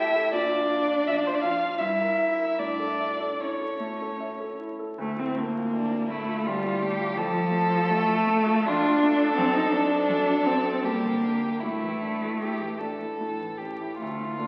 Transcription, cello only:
Already playing: E4
0.33 D4
1.43 F4
1.80 E4
2.60 D4
3.41 C#4
5.00 A3
5.19 C4
5.38 A#3
6.11 A3
6.46 G3
7.18 F3
7.90 A3
8.65 D4
9.37 C4
9.54 D#4
9.72 D4
10.46 C4
10.84 A#3
11.61 A3
13.97 A3
14.36 A#3

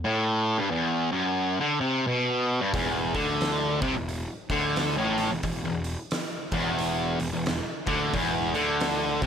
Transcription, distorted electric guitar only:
0.04 A2
0.58 G2
0.71 E2
1.12 F#2
1.60 D3
1.80 C3
2.07 B2
2.61 G2
2.74 E2
3.14 D3
3.82 C3
3.96 E2
4.51 D3
4.97 A2
5.31 E2
5.44 E2
5.65 E2
6.53 E2
7.20 E2
7.33 E2
7.87 D3
8.13 E2
8.54 D3
9.23 C3

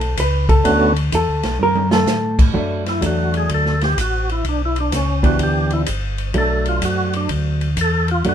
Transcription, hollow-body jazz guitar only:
Already playing: A4
0.20 B4
0.49 A4
1.15 A4
1.63 A#4
1.93 A4
2.54 F#3 A3 D4
3.01 F#3 A3 D4
5.23 E3 B3 D4 G4
6.34 F#3 A3 D4
8.25 F#3 A3 D4

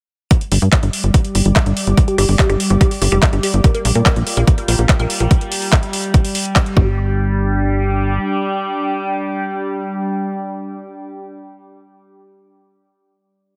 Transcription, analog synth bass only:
0.52 G1
0.62 G2
0.83 G1
1.04 G1
1.35 G1
1.45 G1
1.66 G1
1.87 G1
2.18 G1
2.29 G1
2.50 G1
2.70 G1
3.02 G1
3.12 F1
3.33 G1
3.54 G1
3.85 A#1
3.95 A#2
4.16 A#1
4.37 A#1
4.68 A#1
4.79 A#1
5.00 A#1
5.20 A#1
6.77 G1

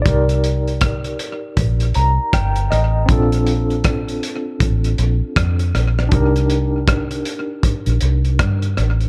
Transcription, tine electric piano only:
0.02 D#4 D5
0.06 G4 A#4
1.95 A#5
2.34 G5
2.70 D#5
3.06 C4 D4
3.10 F4 A4
6.09 D4 D#4 G4
6.15 A#4

